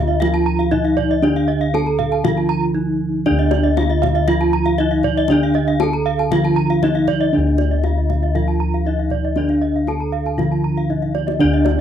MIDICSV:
0, 0, Header, 1, 7, 480
1, 0, Start_track
1, 0, Tempo, 508475
1, 1162, Time_signature, 4, 2, 24, 8
1, 11145, End_track
2, 0, Start_track
2, 0, Title_t, "Bronze metallophone"
2, 0, Program_c, 0, 11
2, 74, Note_on_c, 0, 75, 50
2, 189, Note_on_c, 0, 77, 73
2, 198, Note_off_c, 0, 75, 0
2, 316, Note_off_c, 0, 77, 0
2, 318, Note_on_c, 0, 81, 56
2, 440, Note_off_c, 0, 81, 0
2, 558, Note_on_c, 0, 77, 52
2, 676, Note_on_c, 0, 75, 63
2, 680, Note_off_c, 0, 77, 0
2, 799, Note_off_c, 0, 75, 0
2, 799, Note_on_c, 0, 77, 58
2, 920, Note_off_c, 0, 77, 0
2, 1047, Note_on_c, 0, 75, 59
2, 1164, Note_off_c, 0, 75, 0
2, 1164, Note_on_c, 0, 74, 66
2, 1283, Note_off_c, 0, 74, 0
2, 1288, Note_on_c, 0, 77, 55
2, 1405, Note_off_c, 0, 77, 0
2, 1519, Note_on_c, 0, 77, 56
2, 1641, Note_off_c, 0, 77, 0
2, 1649, Note_on_c, 0, 81, 69
2, 1762, Note_on_c, 0, 82, 49
2, 1765, Note_off_c, 0, 81, 0
2, 1882, Note_off_c, 0, 82, 0
2, 2002, Note_on_c, 0, 81, 50
2, 2118, Note_on_c, 0, 77, 69
2, 2122, Note_off_c, 0, 81, 0
2, 2240, Note_off_c, 0, 77, 0
2, 2240, Note_on_c, 0, 81, 39
2, 2361, Note_off_c, 0, 81, 0
2, 3079, Note_on_c, 0, 74, 81
2, 3198, Note_on_c, 0, 75, 58
2, 3200, Note_off_c, 0, 74, 0
2, 3320, Note_off_c, 0, 75, 0
2, 3432, Note_on_c, 0, 75, 61
2, 3557, Note_off_c, 0, 75, 0
2, 3561, Note_on_c, 0, 77, 77
2, 3681, Note_off_c, 0, 77, 0
2, 3681, Note_on_c, 0, 75, 64
2, 3801, Note_off_c, 0, 75, 0
2, 3918, Note_on_c, 0, 75, 65
2, 4035, Note_on_c, 0, 77, 72
2, 4040, Note_off_c, 0, 75, 0
2, 4158, Note_off_c, 0, 77, 0
2, 4160, Note_on_c, 0, 81, 60
2, 4281, Note_off_c, 0, 81, 0
2, 4395, Note_on_c, 0, 77, 65
2, 4516, Note_on_c, 0, 75, 80
2, 4519, Note_off_c, 0, 77, 0
2, 4636, Note_on_c, 0, 77, 55
2, 4639, Note_off_c, 0, 75, 0
2, 4759, Note_off_c, 0, 77, 0
2, 4885, Note_on_c, 0, 75, 72
2, 5003, Note_off_c, 0, 75, 0
2, 5003, Note_on_c, 0, 74, 85
2, 5123, Note_off_c, 0, 74, 0
2, 5128, Note_on_c, 0, 77, 61
2, 5245, Note_off_c, 0, 77, 0
2, 5359, Note_on_c, 0, 77, 67
2, 5478, Note_on_c, 0, 81, 76
2, 5480, Note_off_c, 0, 77, 0
2, 5600, Note_off_c, 0, 81, 0
2, 5602, Note_on_c, 0, 82, 65
2, 5722, Note_off_c, 0, 82, 0
2, 5846, Note_on_c, 0, 81, 58
2, 5961, Note_on_c, 0, 77, 72
2, 5964, Note_off_c, 0, 81, 0
2, 6082, Note_off_c, 0, 77, 0
2, 6084, Note_on_c, 0, 81, 55
2, 6203, Note_off_c, 0, 81, 0
2, 6326, Note_on_c, 0, 77, 62
2, 6444, Note_off_c, 0, 77, 0
2, 6446, Note_on_c, 0, 75, 65
2, 6562, Note_on_c, 0, 77, 56
2, 6564, Note_off_c, 0, 75, 0
2, 6682, Note_off_c, 0, 77, 0
2, 6803, Note_on_c, 0, 75, 62
2, 6922, Note_off_c, 0, 75, 0
2, 6925, Note_on_c, 0, 74, 43
2, 7043, Note_off_c, 0, 74, 0
2, 7049, Note_on_c, 0, 75, 34
2, 7165, Note_off_c, 0, 75, 0
2, 7281, Note_on_c, 0, 75, 36
2, 7401, Note_off_c, 0, 75, 0
2, 7401, Note_on_c, 0, 77, 49
2, 7521, Note_off_c, 0, 77, 0
2, 7530, Note_on_c, 0, 75, 32
2, 7646, Note_off_c, 0, 75, 0
2, 7769, Note_on_c, 0, 75, 37
2, 7883, Note_on_c, 0, 77, 48
2, 7885, Note_off_c, 0, 75, 0
2, 8002, Note_off_c, 0, 77, 0
2, 8003, Note_on_c, 0, 81, 35
2, 8122, Note_off_c, 0, 81, 0
2, 8252, Note_on_c, 0, 77, 37
2, 8367, Note_off_c, 0, 77, 0
2, 8369, Note_on_c, 0, 75, 39
2, 8485, Note_off_c, 0, 75, 0
2, 8489, Note_on_c, 0, 77, 30
2, 8605, Note_off_c, 0, 77, 0
2, 8729, Note_on_c, 0, 75, 39
2, 8845, Note_off_c, 0, 75, 0
2, 8849, Note_on_c, 0, 74, 44
2, 8965, Note_off_c, 0, 74, 0
2, 8966, Note_on_c, 0, 77, 31
2, 9084, Note_off_c, 0, 77, 0
2, 9212, Note_on_c, 0, 77, 37
2, 9327, Note_off_c, 0, 77, 0
2, 9330, Note_on_c, 0, 81, 51
2, 9444, Note_on_c, 0, 82, 35
2, 9446, Note_off_c, 0, 81, 0
2, 9563, Note_off_c, 0, 82, 0
2, 9688, Note_on_c, 0, 81, 37
2, 9805, Note_off_c, 0, 81, 0
2, 9805, Note_on_c, 0, 77, 41
2, 9923, Note_off_c, 0, 77, 0
2, 9926, Note_on_c, 0, 81, 30
2, 10044, Note_off_c, 0, 81, 0
2, 10171, Note_on_c, 0, 77, 39
2, 10286, Note_off_c, 0, 77, 0
2, 10290, Note_on_c, 0, 75, 37
2, 10406, Note_off_c, 0, 75, 0
2, 10406, Note_on_c, 0, 77, 30
2, 10524, Note_off_c, 0, 77, 0
2, 10639, Note_on_c, 0, 75, 38
2, 10760, Note_off_c, 0, 75, 0
2, 10766, Note_on_c, 0, 74, 84
2, 10884, Note_off_c, 0, 74, 0
2, 10889, Note_on_c, 0, 75, 51
2, 11005, Note_off_c, 0, 75, 0
2, 11145, End_track
3, 0, Start_track
3, 0, Title_t, "Bronze metallophone"
3, 0, Program_c, 1, 11
3, 435, Note_on_c, 1, 82, 56
3, 558, Note_off_c, 1, 82, 0
3, 914, Note_on_c, 1, 74, 78
3, 1038, Note_off_c, 1, 74, 0
3, 1396, Note_on_c, 1, 75, 50
3, 1519, Note_off_c, 1, 75, 0
3, 1876, Note_on_c, 1, 77, 58
3, 1999, Note_off_c, 1, 77, 0
3, 2351, Note_on_c, 1, 82, 70
3, 2476, Note_off_c, 1, 82, 0
3, 3313, Note_on_c, 1, 74, 64
3, 3437, Note_off_c, 1, 74, 0
3, 3794, Note_on_c, 1, 77, 63
3, 3918, Note_off_c, 1, 77, 0
3, 4278, Note_on_c, 1, 82, 74
3, 4400, Note_off_c, 1, 82, 0
3, 4761, Note_on_c, 1, 74, 76
3, 4881, Note_off_c, 1, 74, 0
3, 5239, Note_on_c, 1, 75, 68
3, 5360, Note_off_c, 1, 75, 0
3, 5718, Note_on_c, 1, 77, 65
3, 5840, Note_off_c, 1, 77, 0
3, 6195, Note_on_c, 1, 82, 66
3, 6319, Note_off_c, 1, 82, 0
3, 6683, Note_on_c, 1, 74, 77
3, 6802, Note_off_c, 1, 74, 0
3, 7160, Note_on_c, 1, 74, 43
3, 7281, Note_off_c, 1, 74, 0
3, 7644, Note_on_c, 1, 77, 29
3, 7763, Note_off_c, 1, 77, 0
3, 8119, Note_on_c, 1, 82, 40
3, 8241, Note_off_c, 1, 82, 0
3, 8603, Note_on_c, 1, 74, 42
3, 8723, Note_off_c, 1, 74, 0
3, 9076, Note_on_c, 1, 75, 34
3, 9199, Note_off_c, 1, 75, 0
3, 9557, Note_on_c, 1, 77, 38
3, 9679, Note_off_c, 1, 77, 0
3, 10046, Note_on_c, 1, 82, 35
3, 10164, Note_off_c, 1, 82, 0
3, 10522, Note_on_c, 1, 74, 49
3, 10642, Note_off_c, 1, 74, 0
3, 10996, Note_on_c, 1, 74, 58
3, 11119, Note_off_c, 1, 74, 0
3, 11145, End_track
4, 0, Start_track
4, 0, Title_t, "Bronze metallophone"
4, 0, Program_c, 2, 11
4, 0, Note_on_c, 2, 65, 60
4, 192, Note_off_c, 2, 65, 0
4, 204, Note_on_c, 2, 65, 78
4, 673, Note_on_c, 2, 63, 77
4, 683, Note_off_c, 2, 65, 0
4, 1157, Note_on_c, 2, 62, 68
4, 1158, Note_off_c, 2, 63, 0
4, 1639, Note_off_c, 2, 62, 0
4, 1642, Note_on_c, 2, 69, 63
4, 2120, Note_on_c, 2, 65, 71
4, 2122, Note_off_c, 2, 69, 0
4, 2591, Note_on_c, 2, 63, 52
4, 2601, Note_off_c, 2, 65, 0
4, 3075, Note_on_c, 2, 62, 81
4, 3076, Note_off_c, 2, 63, 0
4, 3558, Note_off_c, 2, 62, 0
4, 3558, Note_on_c, 2, 65, 54
4, 4032, Note_off_c, 2, 65, 0
4, 4044, Note_on_c, 2, 65, 89
4, 4523, Note_off_c, 2, 65, 0
4, 4532, Note_on_c, 2, 63, 68
4, 5007, Note_off_c, 2, 63, 0
4, 5015, Note_on_c, 2, 62, 78
4, 5489, Note_off_c, 2, 62, 0
4, 5497, Note_on_c, 2, 69, 57
4, 5969, Note_off_c, 2, 69, 0
4, 5976, Note_on_c, 2, 65, 84
4, 6449, Note_off_c, 2, 65, 0
4, 6455, Note_on_c, 2, 63, 76
4, 6928, Note_off_c, 2, 63, 0
4, 6931, Note_on_c, 2, 62, 45
4, 7406, Note_off_c, 2, 62, 0
4, 7407, Note_on_c, 2, 65, 35
4, 7879, Note_off_c, 2, 65, 0
4, 7890, Note_on_c, 2, 65, 52
4, 8366, Note_off_c, 2, 65, 0
4, 8375, Note_on_c, 2, 63, 38
4, 8847, Note_on_c, 2, 62, 45
4, 8848, Note_off_c, 2, 63, 0
4, 9325, Note_off_c, 2, 62, 0
4, 9329, Note_on_c, 2, 69, 37
4, 9800, Note_on_c, 2, 65, 48
4, 9805, Note_off_c, 2, 69, 0
4, 10281, Note_off_c, 2, 65, 0
4, 10290, Note_on_c, 2, 63, 34
4, 10766, Note_off_c, 2, 63, 0
4, 10771, Note_on_c, 2, 62, 84
4, 11145, Note_off_c, 2, 62, 0
4, 11145, End_track
5, 0, Start_track
5, 0, Title_t, "Kettle gongs"
5, 0, Program_c, 3, 14
5, 0, Note_on_c, 3, 38, 75
5, 0, Note_on_c, 3, 62, 61
5, 644, Note_off_c, 3, 62, 0
5, 675, Note_on_c, 3, 63, 38
5, 751, Note_off_c, 3, 63, 0
5, 1155, Note_on_c, 3, 62, 57
5, 1638, Note_on_c, 3, 63, 31
5, 1713, Note_off_c, 3, 63, 0
5, 2107, Note_off_c, 3, 38, 0
5, 2116, Note_on_c, 3, 50, 46
5, 2561, Note_off_c, 3, 62, 0
5, 2600, Note_on_c, 3, 63, 30
5, 2675, Note_off_c, 3, 63, 0
5, 3078, Note_on_c, 3, 62, 57
5, 3123, Note_on_c, 3, 38, 72
5, 3521, Note_off_c, 3, 50, 0
5, 3558, Note_on_c, 3, 63, 38
5, 3634, Note_off_c, 3, 63, 0
5, 4482, Note_off_c, 3, 62, 0
5, 4517, Note_on_c, 3, 63, 35
5, 4593, Note_off_c, 3, 63, 0
5, 4995, Note_on_c, 3, 62, 53
5, 5476, Note_on_c, 3, 63, 38
5, 5551, Note_off_c, 3, 63, 0
5, 5944, Note_off_c, 3, 38, 0
5, 5959, Note_on_c, 3, 50, 63
5, 6401, Note_off_c, 3, 62, 0
5, 6442, Note_on_c, 3, 63, 41
5, 6518, Note_off_c, 3, 63, 0
5, 6916, Note_on_c, 3, 62, 61
5, 6967, Note_on_c, 3, 38, 88
5, 7362, Note_off_c, 3, 50, 0
5, 7398, Note_on_c, 3, 63, 37
5, 7474, Note_off_c, 3, 63, 0
5, 8321, Note_off_c, 3, 62, 0
5, 8357, Note_on_c, 3, 63, 38
5, 8432, Note_off_c, 3, 63, 0
5, 8837, Note_on_c, 3, 62, 62
5, 9320, Note_on_c, 3, 63, 39
5, 9396, Note_off_c, 3, 63, 0
5, 9786, Note_off_c, 3, 38, 0
5, 9796, Note_on_c, 3, 50, 52
5, 10242, Note_off_c, 3, 62, 0
5, 10282, Note_on_c, 3, 63, 37
5, 10357, Note_off_c, 3, 63, 0
5, 10756, Note_on_c, 3, 62, 59
5, 10801, Note_on_c, 3, 38, 75
5, 11145, Note_off_c, 3, 38, 0
5, 11145, Note_off_c, 3, 50, 0
5, 11145, Note_off_c, 3, 62, 0
5, 11145, End_track
6, 0, Start_track
6, 0, Title_t, "Bronze metallophone"
6, 0, Program_c, 4, 11
6, 0, Note_on_c, 4, 50, 66
6, 206, Note_off_c, 4, 50, 0
6, 209, Note_on_c, 4, 53, 54
6, 1158, Note_on_c, 4, 50, 59
6, 1165, Note_off_c, 4, 53, 0
6, 2116, Note_on_c, 4, 53, 57
6, 2120, Note_off_c, 4, 50, 0
6, 3079, Note_off_c, 4, 53, 0
6, 3082, Note_on_c, 4, 50, 68
6, 4039, Note_on_c, 4, 53, 51
6, 4042, Note_off_c, 4, 50, 0
6, 4999, Note_on_c, 4, 50, 72
6, 5001, Note_off_c, 4, 53, 0
6, 5960, Note_off_c, 4, 50, 0
6, 5963, Note_on_c, 4, 53, 55
6, 6922, Note_off_c, 4, 53, 0
6, 6926, Note_on_c, 4, 50, 41
6, 7882, Note_on_c, 4, 53, 36
6, 7884, Note_off_c, 4, 50, 0
6, 8841, Note_on_c, 4, 50, 38
6, 8842, Note_off_c, 4, 53, 0
6, 9801, Note_off_c, 4, 50, 0
6, 9804, Note_on_c, 4, 53, 35
6, 10758, Note_on_c, 4, 50, 77
6, 10763, Note_off_c, 4, 53, 0
6, 11145, Note_off_c, 4, 50, 0
6, 11145, End_track
7, 0, Start_track
7, 0, Title_t, "Kendang"
7, 94, Note_on_c, 9, 62, 18
7, 189, Note_off_c, 9, 62, 0
7, 208, Note_on_c, 9, 63, 45
7, 208, Note_on_c, 9, 64, 61
7, 303, Note_off_c, 9, 63, 0
7, 303, Note_off_c, 9, 64, 0
7, 334, Note_on_c, 9, 62, 18
7, 428, Note_off_c, 9, 62, 0
7, 569, Note_on_c, 9, 62, 21
7, 663, Note_off_c, 9, 62, 0
7, 686, Note_on_c, 9, 62, 20
7, 686, Note_on_c, 9, 64, 50
7, 781, Note_off_c, 9, 62, 0
7, 781, Note_off_c, 9, 64, 0
7, 924, Note_on_c, 9, 62, 20
7, 924, Note_on_c, 9, 64, 40
7, 1018, Note_off_c, 9, 62, 0
7, 1018, Note_off_c, 9, 64, 0
7, 1167, Note_on_c, 9, 63, 38
7, 1261, Note_off_c, 9, 63, 0
7, 1285, Note_on_c, 9, 62, 18
7, 1380, Note_off_c, 9, 62, 0
7, 1406, Note_on_c, 9, 62, 15
7, 1500, Note_off_c, 9, 62, 0
7, 1647, Note_on_c, 9, 62, 19
7, 1647, Note_on_c, 9, 63, 48
7, 1741, Note_off_c, 9, 62, 0
7, 1741, Note_off_c, 9, 63, 0
7, 1882, Note_on_c, 9, 62, 18
7, 1882, Note_on_c, 9, 64, 43
7, 1976, Note_off_c, 9, 62, 0
7, 1976, Note_off_c, 9, 64, 0
7, 2001, Note_on_c, 9, 62, 18
7, 2095, Note_off_c, 9, 62, 0
7, 2121, Note_on_c, 9, 63, 43
7, 2121, Note_on_c, 9, 64, 61
7, 2215, Note_off_c, 9, 63, 0
7, 2215, Note_off_c, 9, 64, 0
7, 2243, Note_on_c, 9, 62, 18
7, 2337, Note_off_c, 9, 62, 0
7, 3315, Note_on_c, 9, 62, 23
7, 3315, Note_on_c, 9, 63, 56
7, 3410, Note_off_c, 9, 62, 0
7, 3410, Note_off_c, 9, 63, 0
7, 3560, Note_on_c, 9, 62, 23
7, 3560, Note_on_c, 9, 63, 61
7, 3654, Note_off_c, 9, 62, 0
7, 3654, Note_off_c, 9, 63, 0
7, 3807, Note_on_c, 9, 63, 50
7, 3807, Note_on_c, 9, 64, 64
7, 3901, Note_off_c, 9, 63, 0
7, 3901, Note_off_c, 9, 64, 0
7, 3926, Note_on_c, 9, 62, 25
7, 4020, Note_off_c, 9, 62, 0
7, 4037, Note_on_c, 9, 64, 70
7, 4132, Note_off_c, 9, 64, 0
7, 4160, Note_on_c, 9, 62, 20
7, 4255, Note_off_c, 9, 62, 0
7, 4398, Note_on_c, 9, 62, 25
7, 4493, Note_off_c, 9, 62, 0
7, 4516, Note_on_c, 9, 62, 24
7, 4610, Note_off_c, 9, 62, 0
7, 4750, Note_on_c, 9, 62, 20
7, 4750, Note_on_c, 9, 64, 53
7, 4845, Note_off_c, 9, 62, 0
7, 4845, Note_off_c, 9, 64, 0
7, 4985, Note_on_c, 9, 63, 52
7, 5079, Note_off_c, 9, 63, 0
7, 5231, Note_on_c, 9, 62, 23
7, 5325, Note_off_c, 9, 62, 0
7, 5474, Note_on_c, 9, 62, 23
7, 5474, Note_on_c, 9, 63, 63
7, 5568, Note_off_c, 9, 62, 0
7, 5568, Note_off_c, 9, 63, 0
7, 5845, Note_on_c, 9, 62, 21
7, 5939, Note_off_c, 9, 62, 0
7, 5963, Note_on_c, 9, 63, 55
7, 5963, Note_on_c, 9, 64, 75
7, 6058, Note_off_c, 9, 63, 0
7, 6058, Note_off_c, 9, 64, 0
7, 6089, Note_on_c, 9, 62, 21
7, 6184, Note_off_c, 9, 62, 0
7, 6325, Note_on_c, 9, 62, 25
7, 6419, Note_off_c, 9, 62, 0
7, 6444, Note_on_c, 9, 62, 23
7, 6444, Note_on_c, 9, 63, 57
7, 6444, Note_on_c, 9, 64, 52
7, 6538, Note_off_c, 9, 62, 0
7, 6538, Note_off_c, 9, 63, 0
7, 6538, Note_off_c, 9, 64, 0
7, 6680, Note_on_c, 9, 62, 21
7, 6680, Note_on_c, 9, 64, 58
7, 6774, Note_off_c, 9, 62, 0
7, 6774, Note_off_c, 9, 64, 0
7, 7156, Note_on_c, 9, 62, 13
7, 7156, Note_on_c, 9, 63, 31
7, 7251, Note_off_c, 9, 62, 0
7, 7251, Note_off_c, 9, 63, 0
7, 7396, Note_on_c, 9, 62, 13
7, 7396, Note_on_c, 9, 63, 34
7, 7491, Note_off_c, 9, 62, 0
7, 7491, Note_off_c, 9, 63, 0
7, 7645, Note_on_c, 9, 63, 31
7, 7645, Note_on_c, 9, 64, 31
7, 7739, Note_off_c, 9, 63, 0
7, 7739, Note_off_c, 9, 64, 0
7, 7764, Note_on_c, 9, 62, 13
7, 7858, Note_off_c, 9, 62, 0
7, 7886, Note_on_c, 9, 64, 41
7, 7981, Note_off_c, 9, 64, 0
7, 8010, Note_on_c, 9, 62, 14
7, 8104, Note_off_c, 9, 62, 0
7, 8250, Note_on_c, 9, 62, 13
7, 8344, Note_off_c, 9, 62, 0
7, 8359, Note_on_c, 9, 62, 15
7, 8454, Note_off_c, 9, 62, 0
7, 8593, Note_on_c, 9, 62, 13
7, 8593, Note_on_c, 9, 64, 36
7, 8687, Note_off_c, 9, 62, 0
7, 8687, Note_off_c, 9, 64, 0
7, 8832, Note_on_c, 9, 63, 29
7, 8927, Note_off_c, 9, 63, 0
7, 8957, Note_on_c, 9, 62, 16
7, 9052, Note_off_c, 9, 62, 0
7, 9081, Note_on_c, 9, 62, 12
7, 9175, Note_off_c, 9, 62, 0
7, 9320, Note_on_c, 9, 62, 12
7, 9320, Note_on_c, 9, 63, 32
7, 9415, Note_off_c, 9, 62, 0
7, 9415, Note_off_c, 9, 63, 0
7, 9563, Note_on_c, 9, 62, 12
7, 9658, Note_off_c, 9, 62, 0
7, 9681, Note_on_c, 9, 62, 12
7, 9776, Note_off_c, 9, 62, 0
7, 9809, Note_on_c, 9, 63, 32
7, 9809, Note_on_c, 9, 64, 38
7, 9903, Note_off_c, 9, 63, 0
7, 9903, Note_off_c, 9, 64, 0
7, 9937, Note_on_c, 9, 62, 12
7, 10032, Note_off_c, 9, 62, 0
7, 10169, Note_on_c, 9, 62, 13
7, 10263, Note_off_c, 9, 62, 0
7, 10293, Note_on_c, 9, 64, 24
7, 10387, Note_off_c, 9, 64, 0
7, 10406, Note_on_c, 9, 64, 24
7, 10500, Note_off_c, 9, 64, 0
7, 10523, Note_on_c, 9, 63, 26
7, 10617, Note_off_c, 9, 63, 0
7, 10648, Note_on_c, 9, 63, 36
7, 10742, Note_off_c, 9, 63, 0
7, 11003, Note_on_c, 9, 62, 21
7, 11003, Note_on_c, 9, 63, 53
7, 11098, Note_off_c, 9, 62, 0
7, 11098, Note_off_c, 9, 63, 0
7, 11145, End_track
0, 0, End_of_file